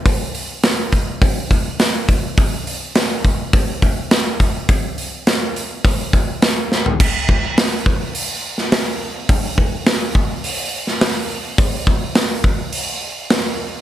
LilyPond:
\new DrumStaff \with { instrumentName = "Drums" } \drummode { \time 4/4 \tempo 4 = 104 <hho bd>8 hho8 <hho sn>8 <hho bd>8 <hho bd>8 <hho bd>8 <hho sn>8 <hho bd>8 | <hho bd>8 hho8 <hho sn>8 <hho bd>8 <hho bd>8 <hho bd>8 <hho sn>8 <hho bd>8 | <hho bd>8 hho8 <hho sn>8 hho8 <hho bd>8 <hho bd>8 <hho sn>8 sn16 tomfh16 | <cymc bd>8 bd8 <hho sn>8 bd8 hho8. sn16 <hho sn>4 |
<hho bd>8 bd8 <hho sn>8 bd8 hho8. sn16 <hho sn>4 | <hho bd>8 bd8 <hho sn>8 bd8 hho4 <hho sn>4 | }